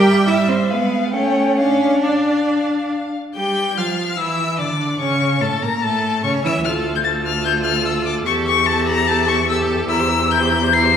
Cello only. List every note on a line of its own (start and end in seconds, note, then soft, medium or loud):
0.00 0.26 G4 medium
0.27 0.35 E4 medium
0.48 0.56 C4 medium
0.69 1.14 B3 medium
1.13 1.57 C#4 medium
1.58 2.04 C#4 medium
2.03 2.92 D4 medium
3.36 3.79 G3 medium
3.77 4.20 F3 soft
4.19 4.61 E3 medium
4.60 4.99 D3 medium
5.00 5.43 C#3 medium
5.42 5.62 A2 medium
5.63 5.84 A#2 medium
5.83 6.24 A2 medium
6.24 6.32 C#3 medium
6.44 6.64 E3 medium
6.64 8.22 D2 medium
8.26 9.86 E2 medium
9.89 10.97 E2 medium